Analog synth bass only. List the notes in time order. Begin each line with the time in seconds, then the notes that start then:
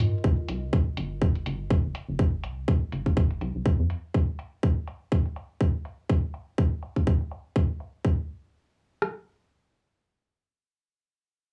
0.24 C2
0.49 C2
0.97 G1
1.46 G1
1.84 G1
2.09 G1
2.44 C2
2.92 G1
3.41 C2
3.55 C2
3.79 F2